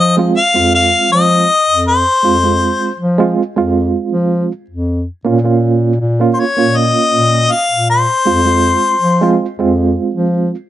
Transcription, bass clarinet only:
Already playing: F3
0.55 F2
1.11 F3
1.69 F2
2.23 F2
2.99 F3
3.57 F2
4.12 F3
4.70 F2
5.25 A#2
6.00 A#2
6.58 A#2
7.13 A#2
7.71 A#2
8.26 F2
9.01 F3
9.59 F2
10.14 F3

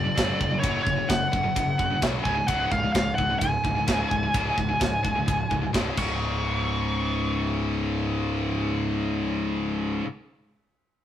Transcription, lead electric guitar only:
Already playing: D5
0.60 C#5
0.83 C#5
1.09 F#5
2.24 G#5
2.48 F#5
2.72 F5
2.92 F5
3.15 F#5
3.39 G#5
5.99 C#6

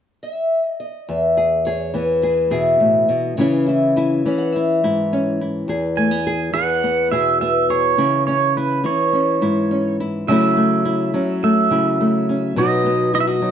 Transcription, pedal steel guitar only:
5.97 G#5
6.54 F#5
7.12 E5
7.41 E5
7.70 C#5
8.27 C#5
8.57 B4
8.86 C#5
10.28 E5
11.44 E5
12.58 D#5
13.15 D#5
13.20 E5
13.29 D#5

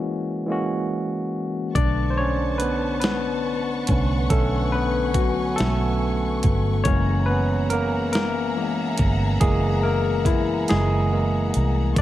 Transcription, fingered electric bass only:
1.76 B1
3.90 C2
4.31 B1
5.60 B1
6.45 G1
6.87 F#1
9.01 G1
9.42 F#1
10.71 F#1
11.56 C2
11.98 B1

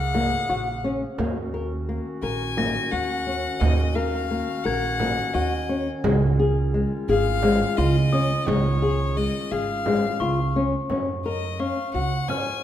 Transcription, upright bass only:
Already playing: C#2
0.50 A#1
1.19 D#2
2.22 A#1
2.92 D#2
3.61 D#2
4.65 A#1
5.35 D#2
6.04 C#2
7.09 G#1
7.78 C#2
8.48 C#2
9.52 G#1
10.20 C#2
10.90 F#2
11.94 C#2

